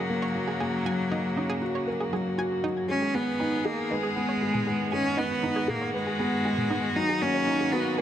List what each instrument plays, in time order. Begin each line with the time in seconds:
Already playing: string quartet C#3 A#3 F#4, felt piano F#3 A#3 C#4 F#4 A#4, cello F#3
0.09 felt piano A#3
0.22 synth arpeggio sound C#5
0.35 felt piano F#3
0.48 synth arpeggio sound G#4
0.60 felt piano A#3, synth arpeggio sound G#4
0.85 felt piano F#3, synth arpeggio sound G#5
1.11 felt piano A#3, synth arpeggio sound D#4
1.36 felt piano C#4, synth arpeggio sound D#4
1.49 synth arpeggio sound G#4
1.62 felt piano F#4
1.75 synth arpeggio sound C#5
1.87 felt piano A#4
2.00 synth arpeggio sound G#4
2.12 felt piano F#3, synth arpeggio sound G#4
2.38 felt piano F#4, synth arpeggio sound G#5
2.63 felt piano F#3, synth arpeggio sound D#4
2.88 string quartet D#3 B3 G#4, felt piano G#3, cello C#4
3.02 synth arpeggio sound G#4
3.14 cello B3, felt piano B3, synth arpeggio sound G#4
3.40 felt piano D#4, synth arpeggio sound G#5
3.65 cello A#3, synth arpeggio sound D#4, felt piano G#4
3.90 cello G#3, synth arpeggio sound D#4, felt piano B4
4.03 synth arpeggio sound G#4
4.16 felt piano B3
4.29 synth arpeggio sound C#5
4.42 felt piano G#3
4.54 synth arpeggio sound G#4, mid tom
4.67 felt piano B3, synth arpeggio sound G#4
4.92 felt piano G#3, cello C#4, string quartet F#4, synth arpeggio sound G#5
5.17 felt piano B3, cello B3, synth arpeggio sound D#4
5.43 synth arpeggio sound D#4, felt piano D#4
5.56 synth arpeggio sound G#4
5.68 cello A#3, felt piano G#4, mid tom
5.82 synth arpeggio sound C#5
5.94 cello G#3, felt piano B4
6.07 synth arpeggio sound G#4
6.19 felt piano B3, synth arpeggio sound G#4
6.45 felt piano G#3, synth arpeggio sound G#5
6.58 mid tom
6.70 felt piano B3, synth arpeggio sound D#4
6.96 felt piano F#3, string quartet A#3, cello D#4, synth arpeggio sound D#4
7.09 synth arpeggio sound G#4
7.21 felt piano A#3, cello C#4
7.34 synth arpeggio sound C#5
7.47 felt piano D#4
7.60 synth arpeggio sound G#4
7.72 cello B3, felt piano F#4, synth arpeggio sound G#4
7.98 cello A#3, felt piano A#4, synth arpeggio sound G#5